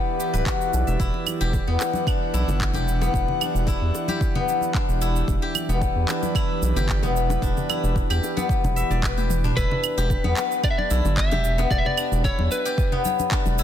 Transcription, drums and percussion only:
0.20 shaker
0.35 shaker
0.46 kick, clap, shaker
0.61 shaker
0.74 shaker
0.88 shaker
1.00 kick, shaker
1.14 high bongo
1.27 high conga, claves, shaker
1.41 shaker
1.53 kick, high bongo, shaker
1.80 clap, high bongo, shaker
1.93 high conga, shaker
2.07 kick, claves, shaker
2.34 shaker
2.48 high conga, low conga, shaker
2.60 kick, clap, shaker
2.74 high bongo, high conga, low conga, shaker
2.88 shaker
3.02 high bongo, high conga, shaker
3.14 kick, shaker
3.28 low conga
3.41 high conga, claves, shaker
3.56 shaker
3.67 kick, high bongo, shaker
3.95 high bongo, shaker
4.08 high conga, shaker
4.21 kick, shaker
4.35 high conga, low conga
4.48 shaker
4.61 high conga, shaker
4.74 kick, clap, shaker
4.89 shaker
5.02 shaker
5.16 shaker
5.28 kick, shaker
5.43 high bongo
5.55 high conga, claves, shaker
5.70 shaker
5.81 kick, high bongo, shaker
6.09 clap, high bongo, shaker
6.23 high conga, shaker
6.35 kick, claves, shaker
6.63 shaker
6.76 high conga, low conga, shaker
6.89 kick, clap, shaker
7.03 high bongo, high conga, low conga, shaker
7.16 shaker
7.30 high bongo, high conga, shaker
7.42 kick, shaker
7.57 high bongo, low conga, shaker
7.69 high conga, claves, shaker
7.84 shaker
7.96 kick, high bongo, shaker
8.11 claves, shaker
8.23 high bongo, shaker
8.37 high conga, shaker
8.49 kick, shaker
8.64 high conga, low conga, shaker
8.77 shaker
8.91 high conga, shaker
9.03 kick, clap, high conga, shaker
9.18 high tom, shaker
9.30 mid tom, shaker
9.44 mid tom, shaker
9.57 kick, shaker
9.71 high bongo, low conga
9.84 claves, shaker
9.98 shaker
10.10 kick, high bongo, shaker
10.24 high conga
10.37 clap, high bongo, shaker
10.52 shaker
10.64 kick, claves, shaker
10.79 high conga
10.91 shaker
11.05 high conga, shaker
11.17 kick, clap, shaker
11.32 high bongo, high conga, low conga, shaker
11.44 shaker
11.58 high bongo, shaker
11.71 kick, shaker
11.85 high bongo, low conga
11.98 claves, shaker
12.12 shaker
12.24 kick, high bongo, shaker
12.39 high conga
12.51 high bongo, shaker
12.66 shaker
12.78 kick, shaker
12.92 low conga
13.05 high conga, shaker
13.19 high conga, shaker
13.31 kick, clap, shaker
13.46 high conga, shaker
13.59 shaker

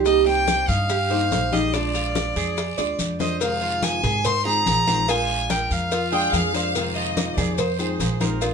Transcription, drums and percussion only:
0.06 high bongo, long guiro, maracas
0.26 high bongo, high conga
0.48 high bongo, high conga, short guiro, maracas
0.68 high bongo, high conga, short guiro, maracas
0.89 high bongo, high conga, long guiro, maracas
1.11 high bongo, high conga
1.32 high bongo, low bongo, high conga, short guiro, maracas
1.53 high conga, short guiro, maracas
1.74 high bongo, long guiro, maracas
1.94 high bongo, high conga, maracas
2.15 high bongo, high conga, short guiro, maracas
2.36 high bongo, high conga, short guiro, maracas
2.57 high bongo, high conga, long guiro, maracas
2.78 high bongo, high conga, maracas
2.99 high conga, short guiro, maracas
3.20 low bongo, high conga, short guiro, maracas
3.41 cowbell, high conga, long guiro, maracas
3.62 high conga
3.82 cowbell, high conga, short guiro, maracas
4.04 cowbell, low conga, short guiro, maracas
4.25 cowbell, high conga, low conga, long guiro, maracas
4.45 high conga
4.66 cowbell, high conga, short guiro, maracas
4.87 cowbell, high conga, short guiro, maracas
5.08 cowbell, high conga, long guiro, maracas
5.29 high conga
5.50 cowbell, high conga, short guiro, maracas
5.71 high conga, short guiro, maracas
5.92 cowbell, high conga, long guiro, maracas
6.12 high conga
6.33 cowbell, high conga, short guiro, maracas
6.54 cowbell, high conga, short guiro, maracas
6.75 cowbell, high conga, long guiro, maracas
6.96 high conga
7.17 cowbell, high conga, short guiro, maracas
7.38 cowbell, low conga, short guiro, maracas
7.58 cowbell, high conga, low conga, long guiro, maracas
7.79 high conga, maracas
8.00 cowbell, high conga, short guiro, maracas
8.20 cowbell, high conga, short guiro, maracas
8.42 cowbell, high conga, long guiro, maracas

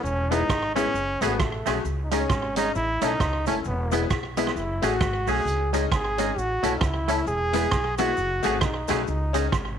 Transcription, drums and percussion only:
0.05 cabasa
0.32 closed hi-hat, cabasa
0.49 kick, cross-stick, cabasa
0.76 closed hi-hat, cabasa
0.95 cabasa
1.21 closed hi-hat, cabasa
1.40 kick, cross-stick, cabasa
1.66 cross-stick, closed hi-hat, cabasa
1.85 cabasa
2.11 closed hi-hat, cabasa
2.30 kick, cross-stick, cabasa
2.56 closed hi-hat, cabasa
2.75 cabasa
3.02 closed hi-hat, cabasa
3.20 kick, cross-stick, cabasa
3.46 closed hi-hat, cabasa
3.64 cabasa
3.92 closed hi-hat, cabasa
4.10 kick, cross-stick, cabasa
4.37 closed hi-hat, cabasa
4.47 cross-stick
4.57 cabasa
4.82 closed hi-hat, cabasa
5.01 kick, cross-stick, cabasa
5.27 open hi-hat, cabasa
5.47 hi-hat pedal, cabasa
5.74 closed hi-hat, cabasa
5.92 kick, cross-stick, cabasa
6.18 closed hi-hat, cabasa
6.38 cabasa
6.63 closed hi-hat, cabasa
6.81 kick, cross-stick, cabasa
7.08 closed hi-hat, cabasa
7.27 cabasa
7.53 closed hi-hat, cabasa
7.71 kick, cross-stick, cabasa
7.98 closed hi-hat, cabasa
8.17 cabasa
8.43 closed hi-hat, cabasa
8.61 kick, cross-stick, cabasa
8.88 cross-stick, closed hi-hat, cabasa
9.07 cabasa
9.34 closed hi-hat, cabasa
9.52 kick, cross-stick, cabasa

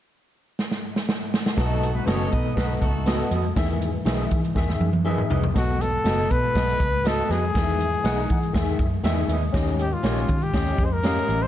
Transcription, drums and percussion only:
0.59 snare
0.72 snare
0.96 snare
1.09 snare
1.34 snare
1.46 snare
1.58 kick, snare, closed hi-hat
1.83 closed hi-hat
2.07 snare, closed hi-hat
2.32 kick, closed hi-hat
2.57 kick, snare, closed hi-hat
2.82 kick, closed hi-hat
3.06 snare, closed hi-hat
3.31 closed hi-hat
3.56 kick, snare, closed hi-hat
3.82 closed hi-hat
4.06 snare, closed hi-hat
4.31 kick, closed hi-hat
4.44 closed hi-hat
4.56 kick, snare
4.69 snare
4.81 high tom
4.93 high tom
5.18 mid tom
5.31 floor tom
5.43 floor tom
5.56 kick, snare, closed hi-hat
5.81 closed hi-hat
6.06 snare, closed hi-hat
6.30 kick, closed hi-hat
6.55 kick, snare, closed hi-hat
6.69 closed hi-hat
6.80 kick, closed hi-hat
7.05 snare, closed hi-hat
7.30 snare, closed hi-hat
7.55 kick, snare, closed hi-hat
7.80 closed hi-hat
8.05 snare, closed hi-hat
8.30 kick, closed hi-hat
8.43 closed hi-hat
8.54 kick, snare, closed hi-hat
8.68 closed hi-hat
8.79 kick, closed hi-hat
9.04 snare, closed hi-hat
9.29 closed hi-hat
9.54 kick, snare, closed hi-hat
9.79 closed hi-hat
10.04 snare, closed hi-hat
10.28 kick, closed hi-hat
10.42 closed hi-hat
10.54 kick, snare, closed hi-hat
10.67 closed hi-hat
10.78 kick, closed hi-hat
11.03 snare, closed hi-hat
11.29 closed hi-hat

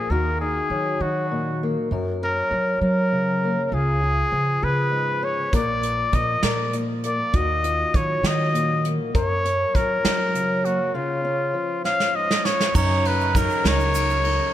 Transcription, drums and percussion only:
5.53 kick, closed hi-hat
5.83 closed hi-hat
6.13 kick, closed hi-hat
6.43 snare, closed hi-hat
6.73 closed hi-hat
7.03 closed hi-hat
7.33 kick, closed hi-hat
7.64 closed hi-hat
7.94 kick, closed hi-hat
8.24 snare, closed hi-hat
8.55 closed hi-hat
8.85 closed hi-hat
9.15 kick, closed hi-hat
9.45 closed hi-hat
9.75 kick, closed hi-hat
10.05 snare, closed hi-hat
10.35 closed hi-hat
10.65 closed hi-hat
11.85 snare
12.00 snare
12.31 snare
12.45 snare
12.60 snare
12.75 kick, crash, shaker
13.05 ride
13.21 shaker
13.35 kick, ride, shaker
13.50 shaker
13.65 snare, ride
13.80 shaker
13.95 ride, shaker
14.10 shaker
14.25 ride

